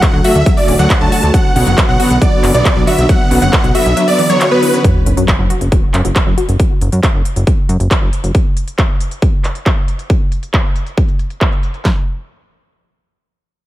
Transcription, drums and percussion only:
0.02 kick, clap, closed hi-hat
0.24 open hi-hat
0.35 closed hi-hat
0.46 kick, closed hi-hat
0.57 open hi-hat
0.68 open hi-hat
0.79 closed hi-hat
0.90 kick, clap, closed hi-hat
1.12 open hi-hat
1.23 closed hi-hat
1.34 kick, closed hi-hat
1.56 open hi-hat
1.67 closed hi-hat
1.78 kick, clap, closed hi-hat
2.00 open hi-hat
2.11 closed hi-hat
2.22 kick, closed hi-hat
2.44 clap, open hi-hat
2.54 closed hi-hat
2.65 kick, clap, closed hi-hat
2.87 open hi-hat
2.98 closed hi-hat
3.09 kick, closed hi-hat
3.31 open hi-hat
3.42 closed hi-hat
3.53 kick, clap, closed hi-hat
3.64 closed hi-hat
3.75 open hi-hat
3.86 closed hi-hat
3.97 closed hi-hat
4.08 open hi-hat
4.19 open hi-hat
4.30 closed hi-hat
4.41 clap, closed hi-hat
4.63 open hi-hat
4.74 closed hi-hat
4.84 kick, closed hi-hat
5.06 closed hi-hat
5.17 closed hi-hat
5.28 kick, clap, closed hi-hat
5.50 closed hi-hat
5.61 closed hi-hat
5.72 kick, closed hi-hat
5.94 clap, closed hi-hat
6.05 closed hi-hat
6.16 kick, clap, closed hi-hat
6.38 closed hi-hat
6.49 closed hi-hat
6.60 kick, closed hi-hat
6.81 closed hi-hat
6.92 closed hi-hat
7.03 kick, clap, closed hi-hat
7.25 closed hi-hat
7.36 closed hi-hat
7.47 kick, closed hi-hat
7.69 closed hi-hat
7.80 closed hi-hat
7.91 kick, clap, closed hi-hat
8.13 closed hi-hat
8.24 closed hi-hat
8.35 kick, closed hi-hat
8.57 closed hi-hat
8.68 closed hi-hat
8.78 kick, clap, closed hi-hat
9.00 closed hi-hat
9.11 closed hi-hat
9.22 kick, closed hi-hat
9.44 clap, closed hi-hat
9.55 closed hi-hat
9.66 kick, clap, closed hi-hat
9.88 closed hi-hat
9.99 closed hi-hat
10.10 kick, closed hi-hat
10.32 closed hi-hat
10.43 closed hi-hat
10.54 kick, clap, closed hi-hat
10.76 closed hi-hat
10.87 closed hi-hat
10.97 kick, closed hi-hat
11.09 closed hi-hat
11.19 closed hi-hat
11.30 closed hi-hat
11.41 kick, clap, closed hi-hat
11.52 closed hi-hat
11.63 closed hi-hat
11.74 closed hi-hat
11.85 kick, snare, clap

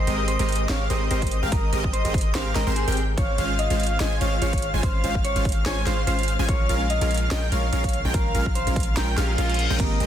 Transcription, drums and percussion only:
0.07 closed hi-hat
0.28 closed hi-hat
0.39 closed hi-hat
0.49 closed hi-hat
0.52 closed hi-hat
0.56 closed hi-hat
0.69 snare, closed hi-hat
0.90 closed hi-hat
1.11 closed hi-hat
1.22 kick, closed hi-hat
1.27 closed hi-hat
1.31 closed hi-hat
1.52 kick, closed hi-hat
1.73 closed hi-hat
1.84 kick
1.94 closed hi-hat
2.05 closed hi-hat
2.14 kick, closed hi-hat
2.18 closed hi-hat
2.21 closed hi-hat
2.35 snare, closed hi-hat
2.56 snare, closed hi-hat
2.76 closed hi-hat
2.88 closed hi-hat
2.92 closed hi-hat
2.97 closed hi-hat
3.18 kick, closed hi-hat
3.38 closed hi-hat
3.59 closed hi-hat
3.70 closed hi-hat
3.80 closed hi-hat
3.83 closed hi-hat
3.86 closed hi-hat
4.00 snare, closed hi-hat
4.21 closed hi-hat
4.42 closed hi-hat
4.53 kick, closed hi-hat
4.58 closed hi-hat
4.62 closed hi-hat
4.83 kick, closed hi-hat
5.04 closed hi-hat
5.15 kick
5.25 closed hi-hat
5.36 closed hi-hat
5.45 kick, closed hi-hat
5.49 closed hi-hat
5.52 closed hi-hat
5.66 snare, closed hi-hat
5.87 snare, closed hi-hat
6.07 closed hi-hat
6.19 closed hi-hat
6.23 closed hi-hat
6.28 closed hi-hat
6.49 kick, closed hi-hat
6.69 closed hi-hat
6.90 closed hi-hat
7.01 closed hi-hat
7.11 closed hi-hat
7.14 closed hi-hat
7.17 closed hi-hat
7.31 snare, closed hi-hat
7.52 closed hi-hat
7.73 closed hi-hat
7.84 kick, closed hi-hat
7.89 closed hi-hat
7.93 closed hi-hat
8.14 kick, closed hi-hat
8.35 closed hi-hat
8.46 kick
8.55 closed hi-hat
8.67 closed hi-hat
8.76 kick, closed hi-hat
8.80 closed hi-hat
8.83 closed hi-hat
8.97 snare, closed hi-hat
9.18 snare, closed hi-hat
9.38 closed hi-hat
9.50 closed hi-hat
9.54 closed hi-hat
9.59 closed hi-hat
9.80 kick, closed hi-hat, crash
10.00 closed hi-hat

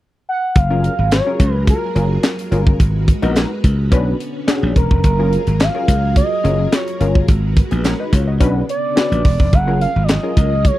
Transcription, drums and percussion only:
0.56 kick, closed hi-hat
0.84 closed hi-hat
1.12 snare, clap, closed hi-hat
1.40 kick, closed hi-hat
1.67 kick, closed hi-hat
1.96 closed hi-hat
2.23 snare, clap, closed hi-hat
2.39 closed hi-hat
2.52 closed hi-hat
2.67 kick
2.80 kick, closed hi-hat
3.08 kick, closed hi-hat
3.22 closed hi-hat
3.36 snare, clap, closed hi-hat
3.64 kick, closed hi-hat
3.92 kick, closed hi-hat
4.20 closed hi-hat
4.48 snare, clap, closed hi-hat
4.76 kick, closed hi-hat
4.91 kick
5.04 kick, closed hi-hat
5.33 closed hi-hat
5.47 closed hi-hat
5.60 snare, clap, closed hi-hat
5.88 kick, closed hi-hat
6.16 kick, closed hi-hat
6.45 closed hi-hat
6.72 snare, clap, closed hi-hat
6.88 closed hi-hat
7.01 closed hi-hat
7.15 kick
7.28 kick, closed hi-hat
7.57 kick, closed hi-hat
7.71 closed hi-hat
7.84 snare, clap, closed hi-hat
8.13 kick, closed hi-hat
8.41 kick, closed hi-hat
8.69 closed hi-hat
8.97 snare, clap, closed hi-hat
9.12 closed hi-hat
9.25 kick, open hi-hat
9.40 kick
9.53 kick, closed hi-hat
9.81 closed hi-hat
10.09 snare, clap, closed hi-hat
10.37 kick, closed hi-hat
10.65 kick, closed hi-hat

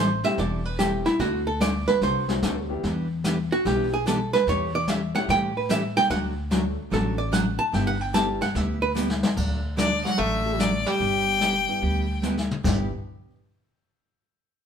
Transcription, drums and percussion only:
0.24 snare
0.38 brush sweep, kick, snare
0.79 kick, snare, hi-hat pedal
1.06 snare
1.19 brush sweep, kick, snare
1.60 kick, snare, hi-hat pedal
1.87 snare
2.01 brush sweep, kick, snare
2.28 snare
2.42 kick, snare, hi-hat pedal
2.83 brush sweep, kick, snare
3.24 kick, snare, hi-hat pedal
3.65 brush sweep, kick, snare
4.06 kick, snare, hi-hat pedal
4.34 snare
4.47 brush sweep, kick, snare
4.87 kick, snare, hi-hat pedal
5.14 snare
5.29 brush sweep, kick, snare
5.69 kick, snare, hi-hat pedal
5.96 snare
6.10 brush sweep, kick, snare
6.51 kick, snare, hi-hat pedal
6.92 brush sweep, kick, snare
7.33 kick, snare, hi-hat pedal
7.73 brush sweep, kick, snare
8.14 kick, snare, hi-hat pedal
8.41 snare
8.55 brush sweep, kick, snare
8.96 snare, hi-hat pedal
9.10 snare
9.23 snare
9.37 brush sweep, kick, crash
9.78 snare, hi-hat pedal
10.05 snare
10.19 brush sweep, kick
10.59 snare, hi-hat pedal
10.86 snare
11.00 brush sweep, kick
11.41 snare, hi-hat pedal
11.82 brush sweep, kick
12.23 snare, hi-hat pedal
12.37 snare
12.51 mid tom
12.64 kick, snare, crash

